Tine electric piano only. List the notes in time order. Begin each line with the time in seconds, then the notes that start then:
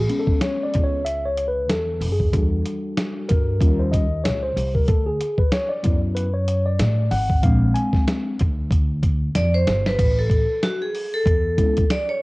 0.00 G#4
0.09 G#3 B3 C#4
0.19 A4
0.41 C#5
0.63 D5
0.84 C#5
1.05 E5
1.25 C#5
1.48 B4
1.69 A4
2.12 G#4
2.32 G3 D4 F#4 A4
3.29 A#4
3.60 G3 C#4 F4
3.79 C5
3.92 D#5
4.24 C#5
4.43 C5
4.75 A#4
4.88 A4
5.06 G#4
5.39 B4
5.52 C#5
5.69 D5
5.83 F#3 B3 E4
6.15 B4
6.34 C#5
6.66 D5
7.11 F#5
7.43 G#3 C4 D4 F5
7.74 G#5
11.57 G#3 B3 C#4 E4